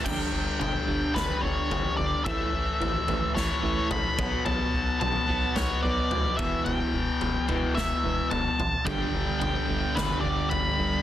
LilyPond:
<<
  \new Staff \with { instrumentName = "Lead electric guitar" } { \time 4/4 \key g \lydian \tempo 4 = 109 g''4 g''4 b'8 cis''4 d''8 | e''2 cis''4 b''4 | a''4 a''4 cis''8 d''4 e''8 | g''2 e''4 a''4 |
g''4 g''4 b'8 d''8 b''4 | }
  \new Staff \with { instrumentName = "Distorted electric guitar" } { \clef bass \time 4/4 \key g \lydian r1 | r1 | r1 | r1 |
<g, d g b d'>2.~ <g, d g b d'>8 <g, d g b d'>8 | }
  \new Staff \with { instrumentName = "Distorted electric guitar" } { \clef bass \time 4/4 \key g \lydian <g, d g>2 <g, d g>2 | <a, e a>2 <a, e a>4. <b, fis b>8~ | <b, fis b>4. <b, fis b>2 <e, b, e>8~ | <e, b, e>4. <e, b, e>2 r8 |
<g, d g>2 <g, d g>2 | }
  \new Staff \with { instrumentName = "Clean electric guitar" } { \clef bass \time 4/4 \key g \lydian <g, d g>8 <g, d>8 <g, d>8 <g, d g>8 <g, d>8 <g, d g>8 <g, d>8 <g, d>8 | <a, e a>8 <a, e>8 <a, e>8 <a, e a>8 <a, e>8 <a, e a>8 <a, e>8 <b, fis b>8 | <b, fis b>8 <b, fis>8 <b, fis>8 <b, fis b>8 <b, fis>8 <b, fis b>8 <b, fis>8 <e, b, e>8 | <e, b, e>8 <e, b,>8 <e, b,>8 <e, b, e>8 <e, b,>8 <e, b, e>8 <e, b,>8 <e, b,>8 |
<g, d g>8 <g, d>8 <g, d>8 <g, d g>8 <g, d>8 <g, d g>8 <g, d>8 <g, d>8 | }
  \new Staff \with { instrumentName = "Analog synth bass" } { \clef bass \time 4/4 \key g \lydian g,,8 g,,8 g,,8 g,,8 g,,8 g,,8 g,,8 g,,8 | a,,8 a,,8 a,,8 a,,8 a,,8 a,,8 a,,8 b,,8 | b,,8 b,,8 b,,8 b,,8 b,,8 b,,8 d,8 e,,8 | e,,8 e,,8 e,,8 e,,8 e,,8 e,,8 e,,8 a,,8 |
g,,8 g,,8 g,,8 g,,8 g,,8 g,,8 g,,8 g,,8 | }
  \new DrumStaff \with { instrumentName = "Drums" } \drummode { \time 4/4 <cymc bd tomfh>4 <tomfh toml>4 <sn tomfh>4 tomfh4 | <bd tomfh>4 tomfh8 tomfh8 sn4 <tomfh toml>8 <bd toml>8 | tomfh4 <tomfh toml>4 <sn tomfh>4 tomfh8 bd8 | tomfh4 tomfh8 tomfh8 sn4 <tomfh toml>8 toml8 |
<bd tomfh>4 <tomfh toml>4 <sn tomfh>4 tomfh4 | }
>>